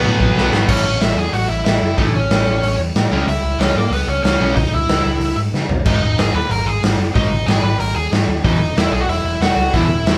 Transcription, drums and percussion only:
0.20 kick loud
0.38 snare medium
0.54 snare loud
0.69 kick loud
0.69 crash loud
1.01 snare loud
1.01 open hi-hat medium
1.33 open hi-hat medium
1.66 snare loud
1.66 open hi-hat medium
1.98 kick loud
1.98 open hi-hat medium
2.30 snare loud
2.30 open hi-hat medium
2.63 open hi-hat medium
2.95 snare loud
2.95 open hi-hat medium
3.28 open hi-hat medium
3.60 snare loud
3.60 open hi-hat medium
3.92 open hi-hat medium
4.24 snare loud
4.24 open hi-hat medium
4.57 kick loud
4.57 open hi-hat medium
4.89 snare loud
4.89 open hi-hat medium
5.21 open hi-hat medium
5.54 snare medium
5.69 floor tom medium
5.86 kick loud
5.86 crash loud
6.18 snare loud
6.18 open hi-hat medium
6.51 open hi-hat medium
6.83 snare loud
6.83 open hi-hat medium
7.16 kick loud
7.16 open hi-hat medium
7.48 snare loud
7.48 open hi-hat medium
7.80 open hi-hat medium
8.12 snare loud
8.12 open hi-hat medium
8.45 kick loud
8.45 open hi-hat medium
8.77 snare loud
8.77 open hi-hat medium
9.09 open hi-hat medium
9.42 snare loud
9.42 open hi-hat medium
9.74 kick loud
9.74 open hi-hat medium
10.06 snare loud
10.06 open hi-hat medium

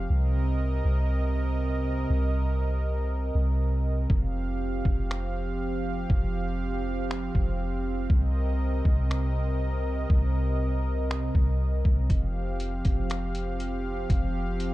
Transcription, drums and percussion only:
4.10 kick loud
4.85 kick medium
5.11 finger snap loud
6.10 kick loud
7.11 finger snap loud
7.35 kick medium
8.10 kick loud
8.85 kick loud
9.11 finger snap loud
10.10 kick loud
11.11 finger snap loud
11.35 kick medium
11.85 kick medium
12.10 kick loud
12.10 closed hi-hat medium
12.60 closed hi-hat medium
12.85 kick loud
12.85 closed hi-hat medium
13.10 finger snap loud
13.10 closed hi-hat medium
13.35 closed hi-hat medium
13.60 closed hi-hat medium
14.10 kick loud
14.10 closed hi-hat medium
14.60 closed hi-hat medium

